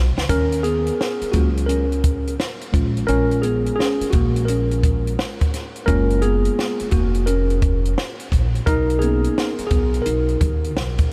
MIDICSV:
0, 0, Header, 1, 5, 480
1, 0, Start_track
1, 0, Key_signature, -6, "minor"
1, 0, Tempo, 697674
1, 204, Time_signature, 4, 2, 24, 8
1, 7655, End_track
2, 0, Start_track
2, 0, Title_t, "Tine electric piano"
2, 0, Program_c, 0, 4
2, 203, Note_on_c, 0, 61, 85
2, 203, Note_on_c, 0, 70, 111
2, 426, Note_off_c, 0, 61, 0
2, 435, Note_on_c, 0, 68, 84
2, 440, Note_on_c, 0, 59, 65
2, 451, Note_off_c, 0, 70, 0
2, 894, Note_off_c, 0, 59, 0
2, 906, Note_on_c, 0, 66, 71
2, 912, Note_on_c, 0, 54, 53
2, 913, Note_on_c, 0, 56, 46
2, 915, Note_on_c, 0, 61, 50
2, 921, Note_on_c, 0, 65, 52
2, 922, Note_on_c, 0, 58, 58
2, 934, Note_off_c, 0, 68, 0
2, 1018, Note_off_c, 0, 66, 0
2, 1030, Note_off_c, 0, 58, 0
2, 1144, Note_on_c, 0, 70, 81
2, 1152, Note_off_c, 0, 61, 0
2, 1160, Note_on_c, 0, 61, 66
2, 1263, Note_off_c, 0, 54, 0
2, 1263, Note_off_c, 0, 56, 0
2, 1267, Note_off_c, 0, 65, 0
2, 1606, Note_off_c, 0, 70, 0
2, 1614, Note_off_c, 0, 61, 0
2, 1875, Note_on_c, 0, 56, 51
2, 1881, Note_on_c, 0, 61, 47
2, 1883, Note_on_c, 0, 65, 57
2, 2112, Note_on_c, 0, 70, 115
2, 2115, Note_off_c, 0, 61, 0
2, 2124, Note_on_c, 0, 61, 97
2, 2347, Note_off_c, 0, 61, 0
2, 2352, Note_on_c, 0, 68, 79
2, 2365, Note_off_c, 0, 70, 0
2, 2370, Note_on_c, 0, 59, 66
2, 2577, Note_off_c, 0, 68, 0
2, 2585, Note_on_c, 0, 68, 90
2, 2590, Note_off_c, 0, 59, 0
2, 2609, Note_on_c, 0, 61, 69
2, 2824, Note_on_c, 0, 66, 73
2, 2829, Note_off_c, 0, 61, 0
2, 2842, Note_off_c, 0, 68, 0
2, 2853, Note_on_c, 0, 58, 66
2, 3064, Note_on_c, 0, 70, 80
2, 3072, Note_off_c, 0, 58, 0
2, 3081, Note_off_c, 0, 66, 0
2, 3091, Note_on_c, 0, 61, 61
2, 3526, Note_off_c, 0, 70, 0
2, 3540, Note_off_c, 0, 61, 0
2, 3772, Note_off_c, 0, 56, 0
2, 3776, Note_off_c, 0, 65, 0
2, 4032, Note_on_c, 0, 70, 108
2, 4035, Note_on_c, 0, 56, 60
2, 4043, Note_on_c, 0, 58, 55
2, 4044, Note_on_c, 0, 65, 65
2, 4048, Note_on_c, 0, 61, 92
2, 4269, Note_off_c, 0, 61, 0
2, 4278, Note_on_c, 0, 68, 85
2, 4285, Note_off_c, 0, 70, 0
2, 4294, Note_on_c, 0, 59, 70
2, 4732, Note_off_c, 0, 56, 0
2, 4734, Note_off_c, 0, 68, 0
2, 4736, Note_off_c, 0, 58, 0
2, 4736, Note_off_c, 0, 65, 0
2, 4741, Note_off_c, 0, 59, 0
2, 4757, Note_on_c, 0, 66, 76
2, 4770, Note_on_c, 0, 58, 58
2, 4990, Note_off_c, 0, 58, 0
2, 4996, Note_on_c, 0, 70, 85
2, 5008, Note_off_c, 0, 66, 0
2, 5009, Note_on_c, 0, 61, 68
2, 5453, Note_off_c, 0, 70, 0
2, 5459, Note_off_c, 0, 61, 0
2, 5961, Note_on_c, 0, 70, 113
2, 5975, Note_on_c, 0, 63, 92
2, 6185, Note_on_c, 0, 68, 91
2, 6193, Note_off_c, 0, 63, 0
2, 6196, Note_on_c, 0, 58, 49
2, 6201, Note_on_c, 0, 61, 46
2, 6205, Note_on_c, 0, 63, 54
2, 6207, Note_on_c, 0, 59, 69
2, 6209, Note_off_c, 0, 70, 0
2, 6545, Note_off_c, 0, 58, 0
2, 6548, Note_off_c, 0, 61, 0
2, 6550, Note_off_c, 0, 63, 0
2, 6643, Note_off_c, 0, 68, 0
2, 6651, Note_on_c, 0, 68, 78
2, 6658, Note_off_c, 0, 59, 0
2, 6683, Note_on_c, 0, 59, 59
2, 6893, Note_on_c, 0, 70, 84
2, 6906, Note_off_c, 0, 59, 0
2, 6915, Note_off_c, 0, 68, 0
2, 6919, Note_on_c, 0, 63, 61
2, 7361, Note_off_c, 0, 70, 0
2, 7374, Note_off_c, 0, 63, 0
2, 7655, End_track
3, 0, Start_track
3, 0, Title_t, "Upright bass"
3, 0, Program_c, 1, 32
3, 0, Note_on_c, 1, 35, 95
3, 92, Note_off_c, 1, 35, 0
3, 116, Note_on_c, 1, 37, 98
3, 189, Note_off_c, 1, 37, 0
3, 203, Note_on_c, 1, 39, 93
3, 608, Note_off_c, 1, 39, 0
3, 922, Note_on_c, 1, 37, 93
3, 1615, Note_off_c, 1, 37, 0
3, 1884, Note_on_c, 1, 34, 85
3, 2086, Note_off_c, 1, 34, 0
3, 2123, Note_on_c, 1, 34, 93
3, 2528, Note_off_c, 1, 34, 0
3, 2845, Note_on_c, 1, 34, 90
3, 3537, Note_off_c, 1, 34, 0
3, 4046, Note_on_c, 1, 30, 92
3, 4450, Note_off_c, 1, 30, 0
3, 4762, Note_on_c, 1, 29, 91
3, 5455, Note_off_c, 1, 29, 0
3, 5726, Note_on_c, 1, 34, 80
3, 5927, Note_off_c, 1, 34, 0
3, 5965, Note_on_c, 1, 35, 96
3, 6370, Note_off_c, 1, 35, 0
3, 6679, Note_on_c, 1, 35, 82
3, 6884, Note_off_c, 1, 35, 0
3, 6927, Note_on_c, 1, 35, 82
3, 7128, Note_off_c, 1, 35, 0
3, 7160, Note_on_c, 1, 39, 92
3, 7406, Note_off_c, 1, 39, 0
3, 7406, Note_on_c, 1, 35, 87
3, 7608, Note_off_c, 1, 35, 0
3, 7655, End_track
4, 0, Start_track
4, 0, Title_t, "Muted upright bass strokes"
4, 837, Note_on_c, 9, 29, 49
4, 905, Note_off_c, 9, 29, 0
4, 2759, Note_on_c, 9, 29, 48
4, 2827, Note_off_c, 9, 29, 0
4, 4682, Note_on_c, 9, 29, 50
4, 4751, Note_off_c, 9, 29, 0
4, 6598, Note_on_c, 9, 29, 45
4, 6667, Note_off_c, 9, 29, 0
4, 7655, End_track
5, 0, Start_track
5, 0, Title_t, "Drums"
5, 122, Note_on_c, 9, 38, 92
5, 191, Note_off_c, 9, 38, 0
5, 201, Note_on_c, 9, 42, 78
5, 202, Note_on_c, 9, 36, 101
5, 270, Note_off_c, 9, 42, 0
5, 271, Note_off_c, 9, 36, 0
5, 359, Note_on_c, 9, 42, 50
5, 427, Note_off_c, 9, 42, 0
5, 440, Note_on_c, 9, 42, 72
5, 509, Note_off_c, 9, 42, 0
5, 595, Note_on_c, 9, 42, 49
5, 664, Note_off_c, 9, 42, 0
5, 693, Note_on_c, 9, 38, 92
5, 762, Note_off_c, 9, 38, 0
5, 836, Note_on_c, 9, 42, 57
5, 905, Note_off_c, 9, 42, 0
5, 916, Note_on_c, 9, 42, 73
5, 921, Note_on_c, 9, 36, 87
5, 985, Note_off_c, 9, 42, 0
5, 990, Note_off_c, 9, 36, 0
5, 1083, Note_on_c, 9, 42, 54
5, 1151, Note_off_c, 9, 42, 0
5, 1163, Note_on_c, 9, 42, 92
5, 1232, Note_off_c, 9, 42, 0
5, 1321, Note_on_c, 9, 42, 44
5, 1390, Note_off_c, 9, 42, 0
5, 1401, Note_on_c, 9, 42, 69
5, 1403, Note_on_c, 9, 36, 87
5, 1470, Note_off_c, 9, 42, 0
5, 1472, Note_off_c, 9, 36, 0
5, 1565, Note_on_c, 9, 42, 43
5, 1633, Note_off_c, 9, 42, 0
5, 1649, Note_on_c, 9, 38, 104
5, 1718, Note_off_c, 9, 38, 0
5, 1798, Note_on_c, 9, 42, 51
5, 1867, Note_off_c, 9, 42, 0
5, 1883, Note_on_c, 9, 36, 98
5, 1887, Note_on_c, 9, 42, 71
5, 1952, Note_off_c, 9, 36, 0
5, 1956, Note_off_c, 9, 42, 0
5, 2042, Note_on_c, 9, 42, 47
5, 2111, Note_off_c, 9, 42, 0
5, 2121, Note_on_c, 9, 42, 84
5, 2190, Note_off_c, 9, 42, 0
5, 2278, Note_on_c, 9, 42, 47
5, 2347, Note_off_c, 9, 42, 0
5, 2360, Note_on_c, 9, 42, 75
5, 2429, Note_off_c, 9, 42, 0
5, 2520, Note_on_c, 9, 42, 49
5, 2588, Note_off_c, 9, 42, 0
5, 2616, Note_on_c, 9, 38, 90
5, 2685, Note_off_c, 9, 38, 0
5, 2760, Note_on_c, 9, 42, 58
5, 2829, Note_off_c, 9, 42, 0
5, 2837, Note_on_c, 9, 42, 71
5, 2843, Note_on_c, 9, 36, 93
5, 2906, Note_off_c, 9, 42, 0
5, 2912, Note_off_c, 9, 36, 0
5, 3000, Note_on_c, 9, 42, 49
5, 3069, Note_off_c, 9, 42, 0
5, 3084, Note_on_c, 9, 42, 93
5, 3152, Note_off_c, 9, 42, 0
5, 3242, Note_on_c, 9, 42, 41
5, 3310, Note_off_c, 9, 42, 0
5, 3325, Note_on_c, 9, 42, 72
5, 3326, Note_on_c, 9, 36, 92
5, 3394, Note_off_c, 9, 42, 0
5, 3395, Note_off_c, 9, 36, 0
5, 3489, Note_on_c, 9, 42, 43
5, 3558, Note_off_c, 9, 42, 0
5, 3571, Note_on_c, 9, 38, 106
5, 3639, Note_off_c, 9, 38, 0
5, 3722, Note_on_c, 9, 42, 50
5, 3725, Note_on_c, 9, 36, 94
5, 3790, Note_off_c, 9, 42, 0
5, 3794, Note_off_c, 9, 36, 0
5, 3809, Note_on_c, 9, 42, 70
5, 3811, Note_on_c, 9, 38, 34
5, 3878, Note_off_c, 9, 42, 0
5, 3880, Note_off_c, 9, 38, 0
5, 3961, Note_on_c, 9, 42, 42
5, 4030, Note_off_c, 9, 42, 0
5, 4042, Note_on_c, 9, 42, 79
5, 4045, Note_on_c, 9, 36, 96
5, 4111, Note_off_c, 9, 42, 0
5, 4114, Note_off_c, 9, 36, 0
5, 4199, Note_on_c, 9, 42, 49
5, 4267, Note_off_c, 9, 42, 0
5, 4278, Note_on_c, 9, 42, 71
5, 4347, Note_off_c, 9, 42, 0
5, 4438, Note_on_c, 9, 42, 50
5, 4507, Note_off_c, 9, 42, 0
5, 4533, Note_on_c, 9, 38, 90
5, 4602, Note_off_c, 9, 38, 0
5, 4675, Note_on_c, 9, 42, 55
5, 4744, Note_off_c, 9, 42, 0
5, 4755, Note_on_c, 9, 42, 66
5, 4762, Note_on_c, 9, 36, 91
5, 4824, Note_off_c, 9, 42, 0
5, 4831, Note_off_c, 9, 36, 0
5, 4916, Note_on_c, 9, 42, 53
5, 4985, Note_off_c, 9, 42, 0
5, 5000, Note_on_c, 9, 42, 93
5, 5069, Note_off_c, 9, 42, 0
5, 5161, Note_on_c, 9, 42, 42
5, 5229, Note_off_c, 9, 42, 0
5, 5242, Note_on_c, 9, 42, 72
5, 5244, Note_on_c, 9, 36, 87
5, 5311, Note_off_c, 9, 42, 0
5, 5313, Note_off_c, 9, 36, 0
5, 5404, Note_on_c, 9, 42, 46
5, 5472, Note_off_c, 9, 42, 0
5, 5489, Note_on_c, 9, 38, 111
5, 5558, Note_off_c, 9, 38, 0
5, 5639, Note_on_c, 9, 42, 54
5, 5708, Note_off_c, 9, 42, 0
5, 5724, Note_on_c, 9, 36, 84
5, 5729, Note_on_c, 9, 42, 72
5, 5793, Note_off_c, 9, 36, 0
5, 5798, Note_off_c, 9, 42, 0
5, 5883, Note_on_c, 9, 42, 47
5, 5952, Note_off_c, 9, 42, 0
5, 5964, Note_on_c, 9, 36, 106
5, 5965, Note_on_c, 9, 42, 81
5, 6033, Note_off_c, 9, 36, 0
5, 6034, Note_off_c, 9, 42, 0
5, 6122, Note_on_c, 9, 42, 43
5, 6190, Note_off_c, 9, 42, 0
5, 6202, Note_on_c, 9, 42, 69
5, 6271, Note_off_c, 9, 42, 0
5, 6359, Note_on_c, 9, 42, 50
5, 6428, Note_off_c, 9, 42, 0
5, 6453, Note_on_c, 9, 38, 98
5, 6522, Note_off_c, 9, 38, 0
5, 6595, Note_on_c, 9, 42, 59
5, 6664, Note_off_c, 9, 42, 0
5, 6676, Note_on_c, 9, 42, 77
5, 6681, Note_on_c, 9, 36, 88
5, 6745, Note_off_c, 9, 42, 0
5, 6749, Note_off_c, 9, 36, 0
5, 6838, Note_on_c, 9, 42, 49
5, 6906, Note_off_c, 9, 42, 0
5, 6919, Note_on_c, 9, 42, 84
5, 6988, Note_off_c, 9, 42, 0
5, 7076, Note_on_c, 9, 42, 38
5, 7145, Note_off_c, 9, 42, 0
5, 7161, Note_on_c, 9, 42, 65
5, 7162, Note_on_c, 9, 36, 88
5, 7230, Note_off_c, 9, 36, 0
5, 7230, Note_off_c, 9, 42, 0
5, 7323, Note_on_c, 9, 42, 41
5, 7391, Note_off_c, 9, 42, 0
5, 7407, Note_on_c, 9, 38, 102
5, 7476, Note_off_c, 9, 38, 0
5, 7556, Note_on_c, 9, 42, 48
5, 7560, Note_on_c, 9, 36, 104
5, 7625, Note_off_c, 9, 42, 0
5, 7629, Note_off_c, 9, 36, 0
5, 7655, End_track
0, 0, End_of_file